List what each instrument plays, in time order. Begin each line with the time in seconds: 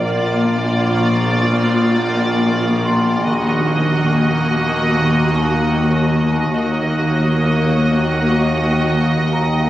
Already playing: grand piano D5 D6
0.03 double bass section A#1, synth drone A#1, cello section A#2, viola section A#3 F4, violin section D5
2.85 grand piano C6
3.26 double bass section D#2, synth drone D#2, cello section D#2, viola section A#3 F#4, violin section D#5
6.52 cello section D#2, double bass section D#2, synth drone D#2, viola section A#3 F#4, violin section D#5
9.33 grand piano A#5